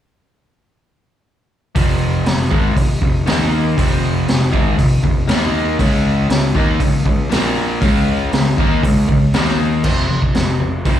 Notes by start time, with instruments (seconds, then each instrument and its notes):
1.75 picked electric bass F1, overdriven electric guitar F2 C3 F3, kick, open hi-hat
2.26 picked electric bass F1, overdriven electric guitar F2 C3, snare, open hi-hat
2.51 picked electric bass G#1, overdriven electric guitar G#2 D#3 G#3, kick
2.76 picked electric bass F1, overdriven electric guitar F2 C3, kick, open hi-hat
3.02 picked electric bass F1, overdriven electric guitar F2 C3, kick
3.26 picked electric bass D#2, overdriven electric guitar D#3 A#3 D#4, snare, open hi-hat
3.41 snare
3.77 picked electric bass F1, overdriven electric guitar F2 C3 F3, kick, open hi-hat
4.27 picked electric bass F1, overdriven electric guitar F2 C3, snare, open hi-hat
4.52 picked electric bass G#1, overdriven electric guitar G#2 D#3 G#3, kick
4.77 picked electric bass F1, overdriven electric guitar F2 C3, kick, open hi-hat
5.03 picked electric bass F1, overdriven electric guitar F2 C3, kick
5.27 picked electric bass D#2, overdriven electric guitar D#3 A#3 D#4, snare, open hi-hat
5.42 snare
5.79 picked electric bass C#2, overdriven electric guitar C#3 G#3 C#4, kick, open hi-hat
6.29 picked electric bass C#2, overdriven electric guitar C#3 G#3, snare, open hi-hat
6.55 picked electric bass D#2, overdriven electric guitar D#3 A#3 D#4, kick
6.80 picked electric bass C#2, overdriven electric guitar C#3 G#3, kick, open hi-hat
7.05 picked electric bass C#2, overdriven electric guitar C#3 G#3, kick
7.29 picked electric bass A#1, overdriven electric guitar A#2 F3 A#3, snare, open hi-hat
7.81 picked electric bass C#2, overdriven electric guitar C#3 G#3 C#4, kick, open hi-hat
8.32 picked electric bass C#2, overdriven electric guitar C#3 G#3, snare, open hi-hat
8.57 picked electric bass D#2, overdriven electric guitar D#3 A#3 D#4, kick
8.83 picked electric bass C#2, overdriven electric guitar C#3 G#3, kick, open hi-hat
9.08 picked electric bass C#2, overdriven electric guitar C#3 G#3, kick
9.33 picked electric bass D#2, overdriven electric guitar D#3 A#3 D#4, snare, open hi-hat
9.48 snare
9.84 picked electric bass F1, overdriven electric guitar F2 C3 F3, kick, crash
10.09 picked electric bass F1, overdriven electric guitar F2 C3
10.22 kick
10.35 picked electric bass F1, overdriven electric guitar F2 C3, snare, open hi-hat
10.59 picked electric bass F1, overdriven electric guitar F2 C3
10.85 picked electric bass F1, overdriven electric guitar F2 C3 F3, kick, open hi-hat